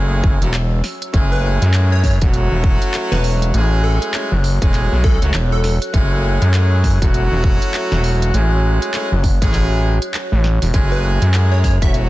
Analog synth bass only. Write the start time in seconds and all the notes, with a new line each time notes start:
Already playing: F#1
0.24 F#1
0.41 E1
1.14 F#1
1.62 F#2
2.22 E1
2.52 E1
3.12 E1
3.54 A1
4.32 F#1
4.62 E1
4.92 B1
5.22 C#2
5.34 E1
5.94 F#1
6.42 F#2
7.02 E1
7.32 E1
7.92 E1
8.34 A1
9.12 F#1
9.42 A1
10.32 A1
10.62 E1
10.74 F#1
11.22 F#2
11.82 E1